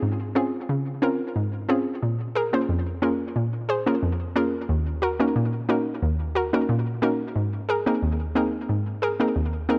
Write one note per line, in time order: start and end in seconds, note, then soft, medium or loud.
0.02 0.53 G#2 medium
0.35 0.50 C4 medium
0.35 0.50 C#4 medium
0.35 0.50 F4 medium
0.35 0.50 G#4 medium
0.69 1.20 C#3 medium
1.02 1.16 C4 medium
1.02 1.17 C#4 medium
1.02 1.17 F4 medium
1.02 1.17 A#4 loud
1.36 1.86 G#2 medium
1.69 1.83 C4 medium
1.69 1.83 C#4 medium
1.69 1.83 F4 medium
1.69 1.84 G#4 loud
2.03 2.53 A#2 medium
2.35 2.43 G#4 medium
2.35 2.43 A#4 loud
2.53 2.66 A#3 medium
2.53 2.66 C#4 medium
2.53 2.66 F4 medium
2.53 2.66 G#4 medium
2.53 2.66 C5 medium
2.69 3.19 F2 medium
3.02 3.16 A#3 medium
3.02 3.17 C#4 medium
3.02 3.17 F4 medium
3.02 3.17 G#4 medium
3.02 3.17 A#4 medium
3.36 3.86 A#2 medium
3.69 3.76 G#4 medium
3.69 3.76 C5 loud
3.86 3.99 A#3 medium
3.86 3.99 C#4 medium
3.86 3.99 F4 medium
3.86 4.00 G#4 medium
3.86 4.00 A#4 medium
4.03 4.53 F2 medium
4.36 4.50 A#3 medium
4.36 4.50 C#4 medium
4.36 4.50 F4 medium
4.36 4.50 G#4 medium
4.36 4.50 A#4 loud
4.69 5.19 D#2 medium
5.02 5.09 F#4 medium
5.02 5.10 A#4 loud
5.20 5.32 A#3 medium
5.20 5.33 C#4 medium
5.20 5.33 D#4 medium
5.20 5.33 F#4 medium
5.20 5.33 A#4 medium
5.36 5.86 A#2 medium
5.69 5.83 A#3 medium
5.69 5.83 C#4 medium
5.69 5.83 D#4 medium
5.69 5.83 F#4 medium
5.69 5.83 A#4 loud
6.02 6.53 D#2 medium
6.35 6.43 F#4 medium
6.35 6.43 A#4 loud
6.53 6.66 A#3 medium
6.53 6.66 C#4 medium
6.53 6.66 D#4 medium
6.53 6.66 F#4 medium
6.53 6.66 A#4 medium
6.69 7.19 A#2 medium
7.02 7.16 A#3 medium
7.02 7.16 C#4 medium
7.02 7.17 D#4 medium
7.02 7.17 F#4 medium
7.02 7.17 A#4 loud
7.36 7.86 G#2 medium
7.69 7.76 G#4 medium
7.69 7.76 A#4 loud
7.86 7.99 A#3 medium
7.86 7.99 C4 medium
7.86 7.99 D#4 medium
7.86 7.99 G#4 medium
7.86 8.00 A#4 medium
8.02 8.53 D#2 medium
8.35 8.50 A#3 medium
8.35 8.50 C4 medium
8.35 8.50 D#4 medium
8.35 8.50 G#4 medium
8.35 8.50 A#4 loud
8.69 9.20 G#2 medium
9.02 9.09 G#4 medium
9.02 9.10 A#4 loud
9.20 9.32 A#3 medium
9.20 9.33 C4 medium
9.20 9.33 D#4 medium
9.20 9.33 G#4 medium
9.20 9.33 A#4 medium
9.36 9.79 D#2 medium
9.69 9.79 A#3 medium
9.69 9.79 C4 medium
9.69 9.79 D#4 medium
9.69 9.79 G#4 medium
9.69 9.79 A#4 loud